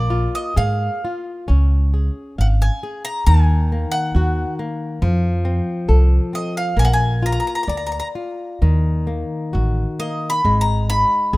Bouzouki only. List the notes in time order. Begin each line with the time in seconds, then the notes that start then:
Already playing: D5
0.35 D#5
0.57 F5
2.41 F#5
2.62 G#5
3.05 A#5
3.27 G#5
3.92 F#5
6.35 D#5
6.57 F5
6.79 G#5
6.85 F#5
6.93 G#5
7.26 A#5
7.32 A#5
7.40 A#5
7.47 A#5
7.55 A#5
7.63 A#5
7.69 A#5
7.77 A#5
7.87 A#5
7.92 A#5
8.00 A#5
10.00 D#5
10.30 B5
10.61 A#5
10.90 B5